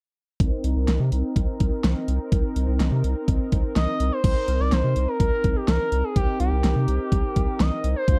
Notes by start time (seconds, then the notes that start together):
0.40 C2 C4 D#4 A#4, kick, closed hi-hat
0.64 C2, closed hi-hat
0.76 C2
0.88 C2, snare, closed hi-hat
1.00 C3
1.12 C2, closed hi-hat
1.36 C2, kick, closed hi-hat
1.60 C2, kick, closed hi-hat
1.84 C2, snare, closed hi-hat
2.08 C2, closed hi-hat
2.32 C2, kick, closed hi-hat
2.56 C2, closed hi-hat
2.68 C2
2.80 C2, snare, closed hi-hat
2.92 C3
3.04 C2, closed hi-hat
3.28 C2, kick, closed hi-hat
3.52 C2, kick, closed hi-hat
3.76 C2 D#5, snare, closed hi-hat
4.00 C2, closed hi-hat
4.12 C5
4.24 C2 C4 D#4 A#4 C5, kick, closed hi-hat, crash
4.48 C2, closed hi-hat
4.60 C2 D5
4.72 C2 C5, snare, closed hi-hat
4.84 C3
4.96 C2, closed hi-hat
5.08 A#4
5.20 C2 A#4, kick, closed hi-hat
5.44 C2, kick, closed hi-hat
5.56 G4
5.68 C2 A#4, snare, closed hi-hat
5.92 C2, closed hi-hat
6.04 G#4
6.16 C2 G4, kick, closed hi-hat
6.40 C2 G4, closed hi-hat
6.52 C2
6.64 C2, snare, closed hi-hat
6.76 C3
6.88 C2, closed hi-hat
7.12 C2, kick, closed hi-hat
7.36 C2, kick, closed hi-hat
7.60 C2 D#5, snare, closed hi-hat
7.84 C2, closed hi-hat
7.96 C5
8.08 D2 C4 D4 F4 C5, kick, closed hi-hat